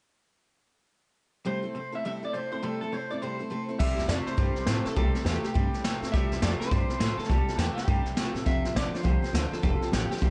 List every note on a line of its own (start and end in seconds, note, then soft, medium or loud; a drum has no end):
1.45 1.64 C3 medium
1.45 1.64 G3 medium
1.45 1.64 A3 medium
1.45 1.63 C4 medium
1.45 1.62 E4 medium
1.45 1.61 A4 medium
1.45 1.95 C5 medium
1.63 1.73 A3 soft
1.63 1.74 C4 soft
1.63 1.75 E4 soft
1.63 1.74 A4 medium
1.75 2.02 C3 medium
1.75 1.93 A3 soft
1.75 1.93 C4 medium
1.75 1.92 E4 medium
1.75 1.91 A4 medium
1.92 2.04 A3 soft
1.92 2.05 C4 soft
1.92 2.04 E4 medium
1.92 2.04 A4 medium
1.92 2.05 E5 medium
2.05 2.23 C3 medium
2.05 2.23 G3 medium
2.05 2.23 A3 medium
2.05 2.23 C4 medium
2.05 2.22 E4 medium
2.05 2.22 A4 medium
2.05 2.11 E5 loud
2.23 2.33 A3 soft
2.23 2.33 C4 soft
2.23 2.34 E4 soft
2.23 2.34 A4 medium
2.23 2.33 D5 medium
2.33 2.60 C3 medium
2.33 2.52 A3 medium
2.33 2.52 C4 medium
2.33 2.51 E4 medium
2.33 2.50 A4 medium
2.33 2.51 C5 medium
2.52 2.62 A3 soft
2.52 2.62 C4 soft
2.52 2.62 E4 medium
2.52 2.62 A4 medium
2.52 2.63 C5 medium
2.63 2.81 C3 medium
2.63 2.81 G3 medium
2.63 2.81 A3 medium
2.63 2.81 C4 medium
2.63 2.81 E4 medium
2.63 2.80 A4 medium
2.81 2.91 A3 soft
2.81 2.92 C4 soft
2.81 2.93 E4 soft
2.81 2.92 A4 soft
2.81 2.93 A4 medium
2.92 3.19 C3 medium
2.92 3.10 A3 medium
2.92 3.11 C4 medium
2.92 3.10 E4 medium
2.92 3.09 A4 medium
2.92 3.10 C5 medium
3.10 3.22 A3 soft
3.10 3.21 C4 soft
3.10 3.22 E4 medium
3.10 3.21 A4 medium
3.10 3.16 D5 medium
3.22 3.40 C3 medium
3.22 3.40 G3 medium
3.22 3.40 A3 medium
3.22 3.40 C4 medium
3.22 3.39 E4 medium
3.22 3.38 A4 medium
3.22 3.69 C5 medium
3.39 3.49 A3 soft
3.39 3.49 C4 soft
3.39 3.50 E4 soft
3.39 3.50 A4 medium
3.50 3.78 C3 medium
3.50 3.68 A3 medium
3.50 3.69 C4 medium
3.50 3.68 E4 medium
3.50 3.67 A4 medium
3.68 3.78 A3 soft
3.68 3.79 C4 soft
3.68 3.79 E4 medium
3.68 3.79 A4 medium
3.79 3.93 C2 medium
3.79 3.98 C3 medium
3.79 3.98 G3 medium
3.79 3.98 A3 medium
3.79 3.97 C4 medium
3.79 3.96 E4 medium
3.79 3.96 A4 medium
3.79 4.07 E5 medium
3.79 kick loud
3.79 snare soft
3.79 crash medium
3.97 4.06 E2 medium
3.97 4.08 A3 soft
3.97 4.08 C4 soft
3.97 4.09 E4 soft
3.97 4.08 A4 soft
3.97 snare soft
4.08 4.22 F2 medium
4.08 4.36 C3 medium
4.08 4.27 A3 medium
4.08 4.26 C4 medium
4.08 4.26 E4 medium
4.08 4.25 A4 medium
4.08 4.13 D5 medium
4.08 snare loud
4.08 hi-hat pedal medium
4.26 4.36 A3 soft
4.26 4.37 C4 soft
4.26 4.37 E4 medium
4.26 4.37 A4 soft
4.26 4.85 C5 medium
4.26 muted upright bass stroke medium
4.26 snare soft
4.37 4.51 G2 medium
4.37 4.56 C3 medium
4.37 4.56 G3 medium
4.37 4.56 A3 medium
4.37 4.56 C4 medium
4.37 4.56 E4 medium
4.37 4.55 A4 medium
4.37 kick loud
4.37 snare soft
4.56 4.66 A3 soft
4.56 4.66 C4 soft
4.56 4.68 E4 soft
4.56 4.67 A4 soft
4.56 muted upright bass stroke medium
4.56 snare soft
4.66 4.81 A2 medium
4.66 4.94 C3 medium
4.66 4.85 A3 medium
4.66 4.85 C4 medium
4.66 4.84 E4 medium
4.66 4.84 A4 medium
4.66 snare loud
4.66 hi-hat pedal medium
4.85 4.95 A3 soft
4.85 4.96 C4 soft
4.85 4.96 E4 medium
4.85 4.96 A4 medium
4.85 4.95 A4 medium
4.85 muted upright bass stroke medium
4.85 snare soft
4.96 5.10 C2 medium
4.96 5.14 C3 medium
4.96 5.15 G3 medium
4.96 5.15 A3 medium
4.96 5.14 C4 medium
4.96 5.14 E4 medium
4.96 5.24 A4 medium
4.96 5.13 A4 medium
4.96 kick loud
4.96 snare soft
5.14 5.24 A3 soft
5.14 5.25 C4 soft
5.14 5.25 E4 medium
5.14 5.25 A4 medium
5.14 snare soft
5.24 5.39 E2 medium
5.24 5.52 C3 medium
5.24 5.43 A3 medium
5.24 5.43 C4 medium
5.24 5.42 E4 medium
5.24 5.43 G4 medium
5.24 5.41 A4 medium
5.24 snare loud
5.24 hi-hat pedal medium
5.43 5.53 A3 soft
5.43 5.54 C4 soft
5.43 5.54 E4 soft
5.43 5.98 G4 medium
5.43 5.54 A4 soft
5.43 muted upright bass stroke medium
5.43 snare soft
5.54 5.69 G2 medium
5.54 5.73 C3 medium
5.54 5.73 G3 medium
5.54 5.73 A3 medium
5.54 5.73 C4 medium
5.54 5.73 E4 medium
5.54 5.72 A4 medium
5.54 kick loud
5.54 snare soft
5.73 5.83 A3 soft
5.73 5.83 C4 medium
5.73 5.84 E4 soft
5.73 5.84 A4 medium
5.73 snare soft
5.83 5.97 A#2 medium
5.83 6.11 C3 medium
5.83 6.02 A3 medium
5.83 6.02 C4 medium
5.83 6.02 E4 medium
5.83 6.01 A4 medium
5.83 snare loud
5.83 hi-hat pedal medium
6.02 6.10 A2 loud
6.02 6.13 A3 medium
6.02 6.13 C4 medium
6.02 6.13 E4 medium
6.02 6.13 A4 medium
6.02 snare soft
6.12 6.27 C2 medium
6.12 6.32 C3 medium
6.12 6.32 G3 medium
6.12 6.32 A3 medium
6.12 6.32 C4 medium
6.12 6.32 E4 medium
6.12 6.32 A4 medium
6.12 6.42 E5 loud
6.12 kick loud
6.12 snare soft
6.31 6.39 E2 medium
6.31 6.43 A3 soft
6.31 6.43 C4 soft
6.31 6.43 E4 soft
6.31 6.43 A4 medium
6.31 snare soft
6.42 6.56 F2 medium
6.42 6.69 C3 medium
6.42 6.61 A3 medium
6.42 6.62 C4 medium
6.42 6.61 E4 medium
6.42 6.60 A4 medium
6.42 6.47 D5 medium
6.42 snare loud
6.42 hi-hat pedal medium
6.60 6.72 C4 medium
6.60 6.72 E4 medium
6.60 6.72 A4 medium
6.60 7.17 C5 loud
6.60 muted upright bass stroke medium
6.60 snare soft
6.64 6.72 A3 soft
6.71 6.85 G2 loud
6.71 6.90 C3 medium
6.71 6.90 G3 medium
6.71 6.90 A3 medium
6.71 6.90 C4 medium
6.71 6.90 E4 medium
6.71 6.89 A4 medium
6.71 kick loud
6.71 snare soft
6.89 7.00 A3 soft
6.89 7.02 C4 soft
6.89 7.01 E4 soft
6.89 7.01 A4 medium
6.89 muted upright bass stroke medium
6.89 snare soft
7.00 7.14 A2 medium
7.00 7.27 C3 medium
7.00 7.19 A3 medium
7.00 7.20 C4 medium
7.00 7.19 E4 medium
7.00 snare loud
7.00 hi-hat pedal medium
7.04 7.18 A4 medium
7.17 7.30 A3 soft
7.17 7.30 C4 medium
7.17 7.30 E4 medium
7.17 7.23 A4 medium
7.17 7.30 A4 medium
7.17 muted upright bass stroke medium
7.17 snare soft
7.24 7.54 A4 medium
7.24 snare soft
7.29 7.43 C2 loud
7.29 7.48 C3 medium
7.29 7.48 G3 medium
7.29 7.49 A3 medium
7.29 7.49 C4 medium
7.29 7.48 E4 medium
7.29 7.47 A4 medium
7.29 kick loud
7.29 snare soft
7.47 7.58 A3 soft
7.47 7.58 C4 soft
7.47 7.59 E4 soft
7.47 7.59 A4 soft
7.47 muted upright bass stroke medium
7.47 snare soft
7.55 7.72 E2 medium
7.55 7.85 C3 medium
7.55 7.77 A3 medium
7.55 7.73 G4 medium
7.55 7.58 A4 medium
7.55 snare loud
7.55 hi-hat pedal medium
7.59 7.77 C4 medium
7.59 7.76 E4 medium
7.59 7.76 A4 medium
7.75 7.87 C4 soft
7.75 7.88 E4 medium
7.75 8.30 G4 medium
7.75 7.88 A4 medium
7.75 muted upright bass stroke medium
7.75 snare soft
7.79 7.87 A3 soft
7.87 8.01 G2 medium
7.87 8.06 C3 medium
7.87 8.06 G3 medium
7.87 8.06 A3 medium
7.87 8.06 C4 medium
7.87 8.06 E4 medium
7.87 8.05 A4 medium
7.87 kick loud
7.87 snare soft
8.05 8.15 A3 soft
8.05 8.16 C4 soft
8.05 8.16 E4 soft
8.05 8.17 A4 soft
8.05 muted upright bass stroke medium
8.05 snare soft
8.16 8.30 A#2 medium
8.16 8.44 C3 medium
8.16 8.35 A3 medium
8.16 8.35 C4 medium
8.16 8.34 E4 medium
8.16 8.33 A4 medium
8.16 snare loud
8.16 hi-hat pedal medium
8.34 8.43 A2 medium
8.34 8.46 A3 soft
8.34 8.45 C4 soft
8.34 8.46 E4 medium
8.34 8.46 A4 medium
8.34 snare soft
8.46 8.60 F1 loud
8.46 8.73 F2 medium
8.46 8.73 C3 medium
8.46 8.64 D3 medium
8.46 8.64 F3 medium
8.46 8.65 C4 medium
8.46 8.65 F4 medium
8.46 8.64 A4 medium
8.46 8.64 C5 medium
8.46 8.76 E5 loud
8.46 kick loud
8.46 snare soft
8.64 8.72 A1 medium
8.64 8.74 C4 soft
8.64 8.75 F4 soft
8.64 8.76 A4 soft
8.64 8.75 C5 soft
8.64 snare soft
8.75 8.89 A#1 medium
8.75 9.02 F2 medium
8.75 9.03 D3 medium
8.75 8.94 C4 medium
8.75 8.93 F4 medium
8.75 8.91 A4 medium
8.75 8.93 C5 medium
8.75 8.94 D5 medium
8.75 snare loud
8.75 hi-hat pedal medium
8.93 9.02 C4 soft
8.93 9.03 F4 soft
8.93 9.03 A4 soft
8.93 9.03 C5 soft
8.93 9.54 C5 medium
8.93 muted upright bass stroke medium
8.93 snare soft
9.03 9.18 C2 medium
9.03 9.32 F2 medium
9.03 9.32 C3 medium
9.03 9.22 D3 medium
9.03 9.22 F3 medium
9.03 9.22 C4 medium
9.03 9.22 F4 medium
9.03 9.21 A4 medium
9.03 9.22 C5 medium
9.03 kick loud
9.03 snare soft
9.22 9.32 C4 soft
9.22 9.33 F4 soft
9.22 9.33 A4 medium
9.22 9.33 C5 medium
9.22 muted upright bass stroke medium
9.22 snare soft
9.33 9.47 D2 medium
9.33 9.61 F2 medium
9.33 9.61 D3 medium
9.33 9.52 C4 medium
9.33 9.51 F4 medium
9.33 9.50 A4 medium
9.33 9.51 C5 medium
9.33 snare loud
9.33 hi-hat pedal medium
9.51 9.62 C4 soft
9.51 9.62 F4 soft
9.51 9.62 A4 soft
9.51 9.58 A4 medium
9.51 9.62 C5 medium
9.51 muted upright bass stroke medium
9.51 snare soft
9.62 9.77 F1 loud
9.62 9.90 F2 medium
9.62 9.90 C3 medium
9.62 9.81 D3 medium
9.62 9.81 F3 medium
9.62 9.81 C4 medium
9.62 9.82 F4 medium
9.62 9.90 A4 medium
9.62 9.80 A4 medium
9.62 9.81 C5 medium
9.62 kick loud
9.62 snare soft
9.81 9.90 C4 soft
9.81 9.92 F4 soft
9.81 9.92 A4 medium
9.81 9.92 C5 soft
9.81 snare soft
9.92 10.06 A1 loud
9.92 10.20 F2 medium
9.92 10.20 D3 medium
9.92 10.10 C4 medium
9.92 10.11 F4 medium
9.92 10.10 G4 medium
9.92 10.10 A4 medium
9.92 10.10 C5 medium
9.92 snare loud
9.92 hi-hat pedal medium
10.10 10.21 C4 soft
10.10 10.22 F4 soft
10.10 10.30 G4 medium
10.10 10.22 A4 medium
10.10 10.22 C5 soft
10.10 muted upright bass stroke medium
10.10 snare soft
10.17 snare soft
10.21 10.30 C2 loud
10.21 10.30 F2 medium
10.21 10.30 C3 medium
10.21 10.30 D3 medium
10.21 10.30 F3 medium
10.21 10.30 C4 medium
10.21 10.30 F4 medium
10.21 10.30 A4 medium
10.21 10.30 C5 medium
10.21 kick loud
10.21 snare soft